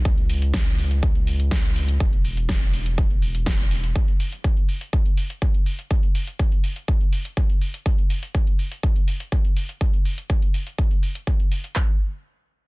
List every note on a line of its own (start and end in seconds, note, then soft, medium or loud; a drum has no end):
0.05 1.98 C#2 medium
0.05 kick loud
0.05 closed hi-hat soft
0.18 closed hi-hat soft
0.30 open hi-hat loud
0.42 closed hi-hat medium
0.54 kick loud
0.54 snare loud
0.54 closed hi-hat medium
0.67 closed hi-hat soft
0.78 open hi-hat medium
0.91 closed hi-hat soft
1.03 kick loud
1.03 closed hi-hat soft
1.15 closed hi-hat soft
1.27 open hi-hat loud
1.40 closed hi-hat soft
1.51 kick loud
1.51 snare loud
1.51 closed hi-hat soft
1.64 closed hi-hat soft
1.76 open hi-hat loud
1.88 closed hi-hat medium
2.00 3.93 E1 medium
2.00 kick loud
2.00 closed hi-hat soft
2.13 closed hi-hat soft
2.25 open hi-hat loud
2.37 closed hi-hat medium
2.49 kick loud
2.49 snare loud
2.49 closed hi-hat soft
2.62 closed hi-hat soft
2.73 open hi-hat medium
2.86 closed hi-hat soft
2.98 kick loud
2.98 closed hi-hat soft
3.10 closed hi-hat soft
3.22 open hi-hat loud
3.35 closed hi-hat soft
3.46 kick loud
3.46 snare loud
3.46 closed hi-hat soft
3.59 closed hi-hat soft
3.71 open hi-hat loud
3.84 closed hi-hat soft
3.95 kick loud
3.95 closed hi-hat soft
4.08 closed hi-hat soft
4.20 open hi-hat loud
4.32 closed hi-hat medium
4.44 kick loud
4.44 closed hi-hat medium
4.57 closed hi-hat soft
4.69 open hi-hat medium
4.81 closed hi-hat soft
4.93 kick loud
4.93 closed hi-hat soft
5.06 closed hi-hat soft
5.17 open hi-hat loud
5.30 closed hi-hat soft
5.42 kick loud
5.42 closed hi-hat soft
5.54 closed hi-hat soft
5.66 open hi-hat medium
5.79 closed hi-hat soft
5.91 kick loud
5.91 closed hi-hat medium
6.03 closed hi-hat soft
6.15 open hi-hat loud
6.27 closed hi-hat medium
6.39 kick loud
6.39 closed hi-hat medium
6.52 closed hi-hat soft
6.64 open hi-hat medium
6.76 closed hi-hat soft
6.88 kick loud
6.88 closed hi-hat soft
7.01 closed hi-hat soft
7.13 open hi-hat loud
7.25 closed hi-hat soft
7.37 kick loud
7.37 closed hi-hat medium
7.50 closed hi-hat soft
7.61 open hi-hat medium
7.74 closed hi-hat soft
7.86 kick loud
7.86 closed hi-hat medium
7.98 closed hi-hat soft
8.10 open hi-hat loud
8.23 closed hi-hat medium
8.35 kick loud
8.35 closed hi-hat medium
8.47 closed hi-hat soft
8.59 open hi-hat medium
8.72 closed hi-hat medium
8.83 kick loud
8.83 closed hi-hat medium
8.96 closed hi-hat soft
9.08 open hi-hat medium
9.20 closed hi-hat soft
9.32 kick medium
9.32 closed hi-hat soft
9.45 closed hi-hat soft
9.57 open hi-hat medium
9.69 closed hi-hat medium
9.81 kick loud
9.81 closed hi-hat soft
9.93 closed hi-hat soft
10.05 open hi-hat loud
10.18 closed hi-hat medium
10.30 kick medium
10.30 closed hi-hat medium
10.42 closed hi-hat soft
10.54 open hi-hat medium
10.67 closed hi-hat medium
10.78 kick loud
10.78 closed hi-hat medium
10.91 closed hi-hat soft
11.03 open hi-hat loud
11.15 closed hi-hat medium
11.27 kick loud
11.27 closed hi-hat medium
11.40 closed hi-hat soft
11.52 open hi-hat medium
11.64 closed hi-hat medium
11.76 kick loud
11.76 clap medium